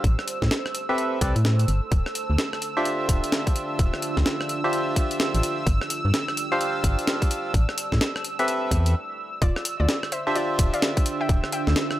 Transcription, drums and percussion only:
0.04 kick, closed hi-hat
0.19 cross-stick
0.28 closed hi-hat
0.42 kick, snare
0.51 snare, closed hi-hat
0.66 cross-stick
0.75 closed hi-hat
0.98 closed hi-hat
1.21 kick, closed hi-hat
1.36 closed hi-hat
1.45 snare, closed hi-hat
1.59 closed hi-hat
1.68 closed hi-hat
1.92 kick, closed hi-hat
2.06 cross-stick
2.15 closed hi-hat
2.38 snare, closed hi-hat
2.53 cross-stick
2.62 closed hi-hat
2.85 closed hi-hat
3.09 kick, closed hi-hat
3.24 closed hi-hat
3.32 snare, closed hi-hat
3.47 kick, closed hi-hat
3.56 closed hi-hat
3.79 kick, closed hi-hat
3.94 cross-stick
4.02 closed hi-hat
4.17 kick, snare
4.26 snare, closed hi-hat
4.41 cross-stick
4.49 closed hi-hat
4.73 closed hi-hat
4.96 kick, closed hi-hat
5.11 closed hi-hat
5.20 snare, closed hi-hat
5.34 closed hi-hat
5.43 closed hi-hat
5.67 kick, closed hi-hat
5.81 cross-stick
5.90 closed hi-hat
6.14 snare, closed hi-hat
6.28 cross-stick
6.37 closed hi-hat
6.61 closed hi-hat
6.84 kick, closed hi-hat
6.99 closed hi-hat
7.07 snare, closed hi-hat
7.22 kick, closed hi-hat
7.31 closed hi-hat
7.54 kick, closed hi-hat
7.69 cross-stick
7.78 closed hi-hat
7.92 kick, snare
8.01 snare, closed hi-hat
8.16 cross-stick
8.24 closed hi-hat
8.39 closed hi-hat
8.48 closed hi-hat
8.71 kick, closed hi-hat
8.86 closed hi-hat
9.42 kick, closed hi-hat
9.56 cross-stick
9.65 closed hi-hat
9.89 snare, closed hi-hat
10.03 cross-stick
10.12 closed hi-hat
10.35 closed hi-hat
10.59 kick, closed hi-hat
10.74 closed hi-hat
10.82 snare, closed hi-hat
10.97 kick, closed hi-hat
11.06 closed hi-hat
11.29 kick, closed hi-hat
11.44 cross-stick
11.52 closed hi-hat
11.67 snare
11.76 snare, closed hi-hat
11.91 cross-stick

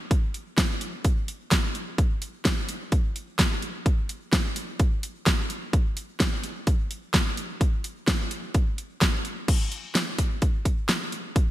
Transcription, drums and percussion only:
0.11 kick, closed hi-hat
0.34 closed hi-hat
0.58 kick, snare, closed hi-hat
0.81 closed hi-hat
1.04 kick, closed hi-hat
1.28 closed hi-hat
1.51 kick, snare, closed hi-hat
1.75 closed hi-hat
1.98 kick, closed hi-hat
2.22 closed hi-hat
2.45 kick, snare, closed hi-hat
2.69 closed hi-hat
2.92 kick, closed hi-hat
3.16 closed hi-hat
3.39 kick, snare, closed hi-hat
3.62 closed hi-hat
3.86 kick, closed hi-hat
4.09 closed hi-hat
4.33 kick, snare, closed hi-hat
4.56 closed hi-hat
4.79 kick, closed hi-hat
5.03 closed hi-hat
5.26 kick, snare, closed hi-hat
5.50 closed hi-hat
5.73 kick, closed hi-hat
5.97 closed hi-hat
6.20 kick, snare, closed hi-hat
6.44 closed hi-hat
6.67 kick, closed hi-hat
6.91 closed hi-hat
7.14 kick, snare, closed hi-hat
7.37 closed hi-hat
7.61 kick, closed hi-hat
7.84 closed hi-hat
8.08 kick, snare, closed hi-hat
8.31 closed hi-hat
8.54 kick, closed hi-hat
8.78 closed hi-hat
9.01 kick, snare, closed hi-hat
9.25 closed hi-hat
9.48 kick, closed hi-hat, crash
9.72 closed hi-hat
9.95 snare, closed hi-hat
10.18 kick, closed hi-hat
10.42 kick, closed hi-hat
10.65 kick, closed hi-hat
10.89 snare, closed hi-hat
11.12 closed hi-hat
11.36 kick, closed hi-hat

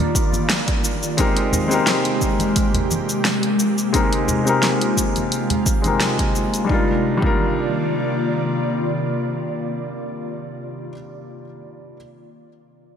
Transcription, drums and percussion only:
0.15 kick, cabasa
0.32 high conga, cabasa
0.50 snare, closed hi-hat, cabasa
0.68 kick, closed hi-hat
0.84 cabasa
1.03 cabasa
1.18 kick, closed hi-hat, cabasa
1.37 closed hi-hat
1.53 low conga, cabasa
1.71 cabasa
1.87 snare, closed hi-hat, cabasa
2.05 closed hi-hat
2.21 kick, cabasa
2.39 closed hi-hat, high conga, cabasa
2.56 kick, closed hi-hat, cabasa
2.74 closed hi-hat, low conga
2.91 high conga, cabasa
3.09 cabasa
3.25 snare, closed hi-hat, cabasa
3.43 closed hi-hat
3.60 cabasa
3.78 cabasa
3.94 kick, closed hi-hat, cabasa
4.13 closed hi-hat
4.28 low conga, cabasa
4.47 cabasa
4.63 snare, closed hi-hat, cabasa
4.81 closed hi-hat
4.97 kick, cabasa
5.16 closed hi-hat, high conga, cabasa
5.32 closed hi-hat, cabasa
5.50 closed hi-hat, low conga
5.66 kick, cabasa
5.84 closed hi-hat, high conga, cabasa
6.00 snare, closed hi-hat, cabasa
6.19 kick, closed hi-hat
6.35 cabasa
6.54 closed hi-hat, cabasa
6.69 kick
7.22 kick

